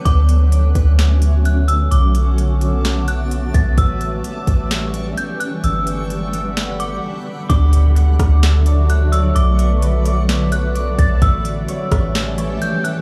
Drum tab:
HH |xxxxxxxx|xxxxxxxx|xxxxxxxx|xxxxxx--|
SD |----o---|----o---|----o---|----o---|
BD |o--o----|-------o|o--o----|--------|

HH |xxxxxxxx|xxxxxxxx|xxxxxxxx|
SD |---ro---|----o---|---ro---|
BD |o--o----|-------o|o--o----|